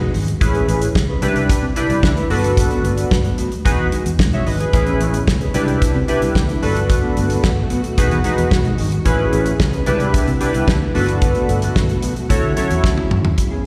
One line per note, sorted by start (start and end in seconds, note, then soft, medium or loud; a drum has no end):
0.00 0.12 G#3 medium
0.00 0.13 D#4 medium
0.00 0.14 F#4 loud
0.13 0.33 G#1 medium
0.13 0.27 G#3 medium
0.13 0.27 D#4 medium
0.13 0.26 F#4 medium
0.13 open hi-hat medium
0.27 muted clean electric guitar stroke medium
0.27 closed hi-hat medium
0.40 0.60 A1 loud
0.40 0.87 C#4 medium
0.40 0.87 E4 medium
0.40 0.87 G#4 medium
0.40 0.87 B4 medium
0.40 muted clean electric guitar stroke medium
0.40 kick loud
0.40 closed hi-hat medium
0.54 0.66 C#4 medium
0.54 0.67 G#4 medium
0.54 0.68 B4 medium
0.54 closed hi-hat soft
0.68 0.87 A1 loud
0.68 0.81 C#4 medium
0.68 0.81 G#4 medium
0.68 0.80 B4 medium
0.68 closed hi-hat medium
0.81 muted clean electric guitar stroke soft
0.81 closed hi-hat medium
0.95 1.14 C#2 loud
0.95 muted clean electric guitar stroke soft
0.95 kick loud
0.95 snare loud
1.08 1.21 C#4 soft
1.08 1.22 G#4 medium
1.08 1.22 B4 medium
1.22 1.50 C2 loud
1.22 1.65 D4 medium
1.22 1.39 D4 medium
1.22 1.65 E4 medium
1.22 1.35 E4 medium
1.22 1.65 G4 medium
1.22 1.66 B4 loud
1.22 1.34 B4 loud
1.22 closed hi-hat medium
1.35 muted clean electric guitar stroke medium
1.35 closed hi-hat soft
1.50 kick loud
1.50 closed hi-hat loud
1.62 1.72 C3 medium
1.62 muted clean electric guitar stroke soft
1.75 1.93 D4 medium
1.75 2.11 D4 loud
1.75 2.11 E4 medium
1.75 1.89 E4 medium
1.75 2.11 G4 medium
1.75 2.11 B4 loud
1.75 1.88 B4 loud
1.75 closed hi-hat medium
1.89 1.99 C2 medium
1.89 muted clean electric guitar stroke medium
1.89 closed hi-hat medium
2.03 2.22 D2 loud
2.03 kick loud
2.03 snare loud
2.16 2.30 D4 medium
2.16 2.30 E4 medium
2.16 2.33 B4 medium
2.16 closed hi-hat soft
2.29 2.67 G1 medium
2.29 2.43 A3 medium
2.29 2.43 B3 medium
2.29 3.17 D4 medium
2.29 3.17 F#4 medium
2.29 2.42 F#4 medium
2.29 3.17 A4 medium
2.29 3.17 B4 medium
2.29 open hi-hat medium
2.43 muted clean electric guitar stroke soft
2.43 closed hi-hat medium
2.57 muted clean electric guitar stroke medium
2.57 kick loud
2.57 closed hi-hat medium
2.70 2.83 A3 medium
2.70 2.83 B3 medium
2.70 2.84 F#4 medium
2.70 closed hi-hat soft
2.84 3.03 G1 loud
2.84 2.97 A3 medium
2.84 2.98 B3 medium
2.84 2.96 F#4 medium
2.84 closed hi-hat medium
2.97 muted clean electric guitar stroke soft
2.97 closed hi-hat medium
3.11 3.30 G1 medium
3.11 kick loud
3.11 snare loud
3.24 3.36 A3 soft
3.24 3.37 B3 medium
3.24 3.38 F#4 medium
3.24 closed hi-hat soft
3.38 3.55 A3 medium
3.38 3.51 B3 medium
3.38 3.50 F#4 medium
3.38 closed hi-hat medium
3.51 muted clean electric guitar stroke soft
3.51 closed hi-hat soft
3.65 3.75 E1 loud
3.65 3.87 D#4 loud
3.65 3.87 F#4 medium
3.65 3.87 G#4 medium
3.65 3.87 B4 loud
3.65 kick loud
3.65 closed hi-hat medium
3.78 3.88 E2 medium
3.78 muted clean electric guitar stroke soft
3.92 4.09 G#3 medium
3.92 4.05 D#4 medium
3.92 4.04 F#4 medium
3.92 closed hi-hat medium
4.05 4.21 E2 medium
4.05 muted clean electric guitar stroke soft
4.05 closed hi-hat medium
4.19 4.38 E1 loud
4.19 muted clean electric guitar stroke soft
4.19 kick loud
4.19 snare loud
4.32 4.44 G#3 medium
4.32 4.45 D#4 medium
4.32 4.46 F#4 medium
4.32 4.46 C#5 medium
4.32 4.46 E5 medium
4.32 closed hi-hat soft
4.46 4.65 G#1 medium
4.46 4.59 G#3 medium
4.46 4.59 D#4 medium
4.46 4.58 F#4 medium
4.46 4.59 B4 medium
4.46 4.59 D#5 medium
4.46 open hi-hat medium
4.59 4.72 G#4 medium
4.59 4.72 B4 medium
4.59 muted clean electric guitar stroke soft
4.59 closed hi-hat medium
4.73 4.92 A1 loud
4.73 5.53 B2 medium
4.73 5.54 G#3 medium
4.73 5.19 C#4 medium
4.73 5.54 C#4 medium
4.73 5.19 E4 medium
4.73 5.19 G#4 medium
4.73 5.20 B4 loud
4.73 muted clean electric guitar stroke medium
4.73 kick loud
4.73 closed hi-hat medium
4.86 4.99 C#4 medium
4.86 5.00 G#4 medium
4.86 5.00 B4 medium
4.86 closed hi-hat soft
5.00 5.19 A1 loud
5.00 5.13 C#4 medium
5.00 5.13 G#4 medium
5.00 5.12 B4 medium
5.00 closed hi-hat medium
5.13 muted clean electric guitar stroke soft
5.13 closed hi-hat medium
5.27 5.46 C#2 medium
5.27 muted clean electric guitar stroke soft
5.27 kick loud
5.27 snare loud
5.40 5.54 C#4 soft
5.40 5.54 G#4 medium
5.40 5.54 B4 medium
5.40 closed hi-hat soft
5.54 5.83 C2 loud
5.54 6.62 D3 medium
5.54 6.62 B3 medium
5.54 5.71 D4 medium
5.54 5.97 D4 loud
5.54 5.98 E4 medium
5.54 6.62 E4 medium
5.54 5.67 E4 medium
5.54 5.98 G4 medium
5.54 5.98 B4 loud
5.54 5.66 B4 medium
5.54 closed hi-hat medium
5.68 muted clean electric guitar stroke soft
5.68 closed hi-hat soft
5.82 kick loud
5.82 closed hi-hat loud
5.95 6.04 C3 loud
5.95 muted clean electric guitar stroke medium
6.08 6.25 D4 medium
6.08 6.43 D4 medium
6.08 6.43 E4 medium
6.08 6.22 E4 loud
6.08 6.43 G4 medium
6.08 6.43 B4 loud
6.08 6.20 B4 loud
6.08 closed hi-hat medium
6.22 6.32 C2 medium
6.22 muted clean electric guitar stroke soft
6.22 closed hi-hat medium
6.35 6.54 D2 medium
6.35 muted clean electric guitar stroke soft
6.35 kick loud
6.35 snare loud
6.49 6.63 D4 medium
6.49 6.63 E4 medium
6.49 6.66 B4 medium
6.49 closed hi-hat soft
6.62 7.00 G1 medium
6.62 7.96 B2 medium
6.62 6.76 A3 medium
6.62 7.96 A3 medium
6.62 6.76 B3 medium
6.62 7.49 D4 medium
6.62 7.49 F#4 medium
6.62 9.04 F#4 medium
6.62 6.75 F#4 medium
6.62 7.49 A4 medium
6.62 7.49 B4 medium
6.62 open hi-hat medium
6.76 muted clean electric guitar stroke medium
6.76 closed hi-hat medium
6.89 muted clean electric guitar stroke medium
6.89 kick loud
6.89 closed hi-hat medium
7.02 7.15 A3 medium
7.02 7.16 B3 medium
7.02 7.16 F#4 medium
7.16 7.36 G1 loud
7.16 7.30 A3 medium
7.16 7.30 B3 medium
7.16 7.29 F#4 medium
7.16 closed hi-hat medium
7.30 muted clean electric guitar stroke soft
7.30 closed hi-hat medium
7.44 7.62 G1 medium
7.44 kick loud
7.44 snare loud
7.57 7.69 A3 medium
7.57 7.70 B3 medium
7.57 7.70 F#4 medium
7.70 7.87 A3 medium
7.70 7.84 B3 medium
7.70 7.82 F#4 loud
7.70 closed hi-hat medium
7.84 muted clean electric guitar stroke soft
7.84 closed hi-hat soft
7.97 8.07 E1 loud
7.97 9.05 D#3 medium
7.97 9.05 G#3 medium
7.97 8.19 D#4 loud
7.97 8.19 F#4 medium
7.97 8.20 G#4 medium
7.97 8.20 B4 loud
7.97 kick loud
7.97 closed hi-hat loud
8.11 8.21 E2 loud
8.11 closed hi-hat soft
8.24 8.41 G#3 medium
8.24 8.59 D#4 medium
8.24 8.38 D#4 loud
8.24 8.59 F#4 medium
8.24 8.37 F#4 medium
8.24 8.60 G#4 medium
8.24 8.60 B4 medium
8.24 closed hi-hat medium
8.38 8.53 E2 medium
8.38 muted clean electric guitar stroke soft
8.38 closed hi-hat medium
8.51 8.70 E1 medium
8.51 muted clean electric guitar stroke medium
8.51 kick loud
8.51 snare loud
8.65 8.77 G#3 medium
8.65 8.78 D#4 medium
8.65 8.79 F#4 medium
8.65 closed hi-hat soft
8.78 8.98 G#1 medium
8.78 8.92 G#3 medium
8.78 8.92 D#4 medium
8.78 8.91 F#4 medium
8.78 open hi-hat medium
8.92 muted clean electric guitar stroke soft
8.92 closed hi-hat medium
9.05 9.24 A1 loud
9.05 9.86 C#3 medium
9.05 10.93 B3 medium
9.05 9.52 C#4 loud
9.05 9.52 E4 medium
9.05 9.86 G#4 medium
9.05 9.52 G#4 medium
9.05 9.52 B4 loud
9.05 muted clean electric guitar stroke soft
9.05 kick loud
9.05 closed hi-hat medium
9.19 9.31 C#4 medium
9.19 9.32 G#4 medium
9.19 9.33 B4 medium
9.32 9.52 A1 loud
9.32 9.46 C#4 medium
9.32 9.46 G#4 medium
9.32 9.45 B4 medium
9.32 closed hi-hat medium
9.46 muted clean electric guitar stroke medium
9.46 closed hi-hat medium
9.59 9.79 C#2 loud
9.59 muted clean electric guitar stroke soft
9.59 kick loud
9.59 snare loud
9.73 9.86 C#4 soft
9.73 9.87 G#4 medium
9.73 9.86 B4 medium
9.73 closed hi-hat soft
9.86 10.15 C2 loud
9.86 10.94 D3 medium
9.86 10.30 D4 loud
9.86 10.04 D4 medium
9.86 10.93 E4 medium
9.86 10.30 E4 medium
9.86 10.00 E4 medium
9.86 10.30 G4 medium
9.86 10.30 B4 loud
9.86 9.99 B4 loud
9.86 closed hi-hat medium
10.00 muted clean electric guitar stroke medium
10.00 closed hi-hat soft
10.14 kick loud
10.14 closed hi-hat medium
10.28 10.37 C3 loud
10.28 closed hi-hat soft
10.40 10.75 D4 medium
10.40 10.58 D4 medium
10.40 10.75 E4 medium
10.40 10.54 E4 medium
10.40 10.75 G4 medium
10.40 10.76 B4 loud
10.40 10.53 B4 loud
10.40 closed hi-hat medium
10.54 10.64 C2 medium
10.54 muted clean electric guitar stroke soft
10.54 closed hi-hat medium
10.68 10.87 D2 loud
10.68 kick loud
10.68 snare loud
10.81 10.95 D4 medium
10.81 10.96 E4 medium
10.81 10.98 B4 medium
10.94 11.32 G1 loud
10.94 12.29 B2 medium
10.94 11.08 A3 medium
10.94 12.29 A3 medium
10.94 11.08 B3 medium
10.94 11.81 D4 medium
10.94 11.81 F#4 medium
10.94 12.29 F#4 medium
10.94 11.07 F#4 medium
10.94 11.81 A4 medium
10.94 11.81 B4 medium
10.94 open hi-hat medium
11.08 muted clean electric guitar stroke medium
11.08 closed hi-hat medium
11.22 muted clean electric guitar stroke soft
11.22 kick loud
11.22 closed hi-hat medium
11.35 11.47 A3 medium
11.35 11.48 B3 medium
11.35 11.49 F#4 medium
11.35 closed hi-hat soft
11.48 11.68 G1 loud
11.48 11.62 A3 medium
11.48 11.62 B3 medium
11.48 11.61 F#4 medium
11.48 closed hi-hat medium
11.62 muted clean electric guitar stroke soft
11.62 closed hi-hat medium
11.76 11.95 G1 loud
11.76 kick loud
11.76 snare loud
11.89 12.01 A3 medium
11.89 12.02 B3 soft
11.89 12.02 F#4 medium
11.89 closed hi-hat soft
12.02 12.20 A3 medium
12.02 12.16 B3 medium
12.02 12.15 F#4 medium
12.02 closed hi-hat medium
12.16 muted clean electric guitar stroke soft
12.16 closed hi-hat soft
12.29 12.39 D2 loud
12.29 13.37 C#3 medium
12.29 13.37 F#3 medium
12.29 12.51 E4 medium
12.29 13.37 E4 medium
12.29 12.51 F#4 medium
12.29 12.52 A4 medium
12.29 12.52 C#5 loud
12.29 muted clean electric guitar stroke soft
12.29 kick loud
12.29 closed hi-hat medium
12.43 12.53 D3 medium
12.43 muted clean electric guitar stroke medium
12.56 12.70 F#3 medium
12.56 12.70 C#4 medium
12.56 12.91 E4 medium
12.56 12.69 E4 loud
12.56 12.91 F#4 medium
12.56 12.92 A4 medium
12.56 12.92 C#5 loud
12.56 closed hi-hat medium
12.70 12.80 E2 medium
12.70 12.82 F#3 medium
12.70 12.83 C#4 medium
12.70 12.84 E4 medium
12.70 closed hi-hat medium
12.84 13.13 D2 loud
12.84 muted clean electric guitar stroke soft
12.84 kick loud
12.84 snare medium
12.97 13.09 F#3 medium
12.97 13.10 C#4 medium
12.97 13.11 E4 loud
12.97 high tom medium
13.11 13.30 G#1 medium
13.11 13.24 F#3 medium
13.11 13.24 C#4 medium
13.11 13.23 E4 medium
13.11 mid tom loud
13.24 muted clean electric guitar stroke medium
13.24 floor tom loud
13.38 muted clean electric guitar stroke soft
13.38 kick medium
13.38 closed hi-hat medium
13.51 13.63 B3 medium
13.51 13.64 C#4 medium
13.51 13.65 G#4 medium